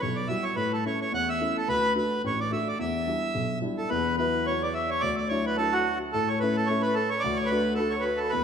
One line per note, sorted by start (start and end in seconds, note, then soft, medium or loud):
0.00 0.28 B1 medium
0.00 0.17 C#5 medium
0.16 0.28 D5 medium
0.28 0.51 G3 soft
0.28 0.51 E4 soft
0.28 0.51 F#4 soft
0.28 0.44 E5 medium
0.43 0.56 C#5 medium
0.56 0.83 A2 medium
0.56 0.72 B4 medium
0.73 0.84 A4 medium
0.85 1.07 A3 soft
0.85 1.07 C#4 soft
0.85 1.07 E4 soft
0.85 1.00 C#5 medium
1.01 1.13 C#5 medium
1.12 1.39 E2 medium
1.12 1.29 F#5 loud
1.29 1.57 E5 medium
1.40 1.62 A3 soft
1.40 1.62 C#4 soft
1.40 1.62 E4 medium
1.57 1.68 A4 medium
1.68 1.94 D2 medium
1.68 1.94 B4 loud
1.95 2.18 A3 soft
1.95 2.17 D4 soft
1.95 2.18 F#4 soft
1.95 2.22 B4 medium
2.24 2.50 A1 medium
2.24 2.40 C#5 medium
2.40 2.52 D5 medium
2.50 2.73 A3 soft
2.50 2.73 D4 soft
2.50 2.74 F#4 soft
2.50 2.68 E5 medium
2.68 2.78 D5 medium
2.79 3.06 E2 medium
2.79 3.59 E5 medium
3.06 3.29 G3 soft
3.06 3.29 D4 soft
3.06 3.29 E4 soft
3.35 3.62 B1 medium
3.62 3.84 G3 soft
3.62 3.84 D4 soft
3.62 3.84 E4 medium
3.78 3.90 A4 medium
3.90 4.98 E2 medium
3.90 4.16 B4 medium
3.90 4.19 B4 medium
4.17 4.45 F#3 soft
4.17 4.45 B3 soft
4.17 4.46 E4 soft
4.17 4.46 B4 medium
4.17 4.45 B4 medium
4.46 4.74 F#3 soft
4.46 4.74 B3 soft
4.46 4.75 E4 soft
4.46 4.63 C#5 medium
4.63 4.74 D5 medium
4.63 4.68 D5 medium
4.74 4.90 E5 medium
4.74 4.91 E5 medium
4.90 5.02 C#5 medium
4.90 5.03 C#5 medium
5.00 6.10 D2 medium
5.00 5.16 D5 loud
5.06 5.16 D5 medium
5.16 5.28 D5 medium
5.16 5.19 E5 medium
5.20 5.25 D5 medium
5.28 5.56 F#3 soft
5.28 5.56 D4 soft
5.28 5.57 E4 soft
5.28 5.45 C#5 medium
5.28 5.46 C#5 medium
5.46 5.57 B4 medium
5.46 5.59 B4 medium
5.57 5.84 F#3 soft
5.57 5.84 D4 soft
5.57 5.85 E4 soft
5.57 5.74 A4 medium
5.57 5.75 A4 medium
5.73 5.99 F#4 medium
5.73 6.00 F#4 medium
6.12 7.21 A2 medium
6.12 6.29 A4 medium
6.28 6.39 C#5 medium
6.28 6.41 C#5 medium
6.40 6.68 A3 soft
6.40 6.68 C#4 soft
6.40 6.68 E4 soft
6.40 6.56 B4 medium
6.40 6.49 B4 medium
6.56 6.68 A4 medium
6.66 6.96 A3 soft
6.66 6.96 C#4 soft
6.66 6.82 C#5 medium
6.66 6.85 C#5 medium
6.70 6.96 E4 medium
6.81 6.95 B4 medium
6.86 6.96 B4 medium
6.94 7.10 A4 medium
6.94 7.12 A4 medium
7.09 7.23 C#5 medium
7.09 7.22 C#5 medium
7.19 7.38 D5 medium
7.24 8.30 D2 medium
7.24 7.39 D5 medium
7.36 7.50 C#5 medium
7.40 7.52 C#5 medium
7.46 7.74 B4 medium
7.51 7.77 A3 soft
7.51 7.77 D4 soft
7.51 7.78 F#4 soft
7.51 7.75 B4 medium
7.75 8.05 A3 soft
7.75 7.93 A4 medium
7.75 7.79 B4 medium
7.79 8.05 D4 soft
7.79 8.06 F#4 soft
7.79 7.95 A4 medium
7.90 8.04 C#5 medium
7.96 8.06 C#5 medium
8.00 8.19 B4 medium
8.05 8.22 B4 medium
8.17 8.31 A4 medium
8.21 8.34 A4 medium
8.29 8.44 E2 medium
8.29 8.44 B4 medium
8.34 8.44 B4 medium